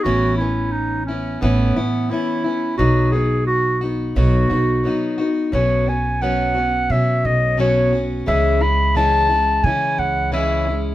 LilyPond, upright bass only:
\new Staff \with { instrumentName = "Upright bass" } { \clef bass \time 4/4 \key b \mixolydian \tempo 4 = 88 a,,2 a,,8 a,,8 r4 | b,,2 b,,8 b,,8 r4 | b,,2 b,8 b,,4. | cis,2 cis8 cis,4. | }